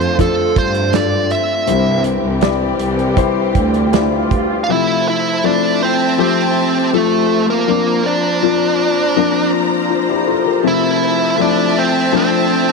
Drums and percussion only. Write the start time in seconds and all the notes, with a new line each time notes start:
0.01 closed hi-hat
0.19 kick, closed hi-hat
0.56 kick, closed hi-hat
0.75 closed hi-hat
0.93 snare, closed hi-hat
1.30 closed hi-hat
1.67 closed hi-hat
2.04 closed hi-hat
2.41 snare, closed hi-hat
2.79 closed hi-hat
2.99 closed hi-hat
3.17 kick, closed hi-hat
3.55 kick, closed hi-hat
3.74 closed hi-hat
3.93 snare, closed hi-hat
4.31 kick, closed hi-hat